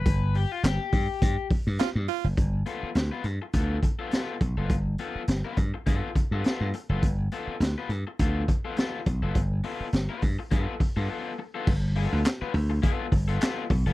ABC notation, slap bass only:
X:1
M:4/4
L:1/16
Q:"Swing 16ths" 1/4=103
K:Gmix
V:1 name="Slap bass" clef=bass
G,,,3 z G,,, z G,, z G,, z2 G,, z G,, z ^F,,, | G,,,2 z2 D,, z G,, z D,,2 z4 B,,, ^F,,, | G,,,2 z2 G,,, z G,, z G,, z2 G,, z G,, z ^F,,, | G,,,2 z2 D,, z G,, z D,,2 z4 B,,, ^F,,, |
G,,,2 z2 G,,, z G,, z G,, z2 G,, z4 | G,,,3 D,, z2 D,,2 z2 G,,,2 z2 B,,, ^F,,, |]